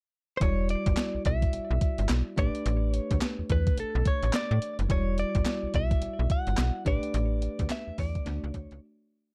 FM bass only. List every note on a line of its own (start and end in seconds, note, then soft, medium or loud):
0.41 0.76 E1 loud
0.86 0.95 G1 medium
1.15 1.19 B1 medium
1.25 1.47 B1 loud
1.54 1.60 B1 medium
1.71 1.79 B1 medium
1.99 2.07 G1 medium
2.10 2.23 B1 medium
2.38 2.51 A1 loud
2.66 3.00 A1 loud
3.11 3.19 D2 medium
3.39 3.43 E2 medium
3.50 3.71 E2 medium
3.78 3.85 B1 soft
3.95 4.03 B1 loud
4.23 4.31 A1 loud
4.51 4.59 A2 loud
4.79 4.87 F#1 medium
4.90 5.24 E1 loud
5.35 5.43 G1 medium
5.63 5.68 B1 medium
5.74 5.95 B1 medium
6.02 6.09 B1 medium
6.19 6.28 B1 medium
6.47 6.56 G1 medium
6.58 6.71 B1 loud
6.86 6.99 A1 medium
7.14 7.49 A1 loud
7.59 7.68 D2 medium
7.88 7.92 E2 soft
7.98 8.20 E2 medium
8.27 8.40 D2 loud
8.44 8.52 C#2 loud
8.54 8.67 D2 medium
8.72 8.80 C#2 loud